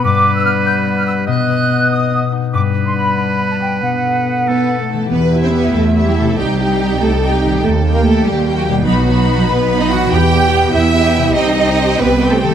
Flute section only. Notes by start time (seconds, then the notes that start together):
0.03 D6
0.35 E6
0.45 F6
0.66 G6
0.97 F6
1.06 E6
1.28 F#6
1.91 D#6
2.53 D6
2.85 C6
2.96 B5
3.16 B5
3.50 A5
3.60 G5
3.81 F#5